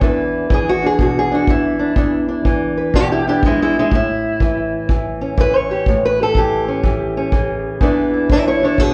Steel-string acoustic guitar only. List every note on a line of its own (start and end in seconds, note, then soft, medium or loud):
0.01 1.95 E2 medium
0.01 0.50 E3 medium
0.01 0.82 D4 soft
0.01 0.53 E4 soft
0.01 0.69 B4 soft
0.50 1.48 E3 medium
0.50 0.69 G#4 medium
0.69 0.84 F#4 loud
0.82 1.30 D4 soft
0.86 1.01 G#4 loud
0.99 1.48 B2 medium
0.99 1.17 F#4 medium
1.19 1.34 G#4 loud
1.32 1.78 D4 soft
1.32 1.50 F#4 medium
1.48 2.45 E3 medium
1.48 2.47 E4 loud
1.79 1.95 D4 soft
1.96 3.92 E2 medium
1.96 2.27 D4 soft
2.28 3.26 D4 soft
2.45 3.45 E3 medium
2.78 3.90 B4 soft
2.95 3.92 B2 medium
2.95 3.00 E4 medium
2.95 3.11 G4 loud
3.12 3.21 E4 medium
3.12 3.28 G4 medium
3.27 3.91 D4 soft
3.27 3.35 E4 medium
3.27 3.44 G4 loud
3.46 3.61 G#3 medium
3.46 3.61 E4 medium
3.62 3.77 G#3 medium
3.62 3.77 E4 medium
3.79 3.94 G#3 medium
3.79 3.94 E4 medium
3.92 5.85 A2 medium
3.92 4.91 E4 loud
4.41 4.89 E3 medium
4.89 5.38 E3 medium
5.21 5.85 C#4 soft
5.38 6.36 E3 medium
5.38 5.56 B4 loud
5.56 6.04 C#5 medium
5.71 5.85 G4 medium
5.89 7.80 A2 medium
6.05 6.21 B4 loud
6.20 6.36 G4 soft
6.20 6.37 A4 loud
6.36 6.82 E3 medium
6.36 7.82 G4 medium
6.68 7.16 C#4 soft
6.83 7.32 E3 medium
7.17 7.80 C#4 soft
7.33 7.80 E3 medium
7.81 8.94 E2 medium
7.81 8.30 E3 medium
7.81 8.62 D4 medium
7.81 8.12 E4 soft
7.81 8.33 B4 medium
8.14 8.30 E4 soft
8.32 8.94 E3 medium
8.32 8.46 E4 medium
8.32 8.47 C#5 medium
8.48 8.63 E4 medium
8.48 8.64 C#5 loud
8.63 8.94 D4 medium
8.63 8.80 E4 medium
8.63 8.81 C#5 medium
8.79 8.94 B2 medium
8.79 8.94 G#4 medium
8.79 8.94 B4 medium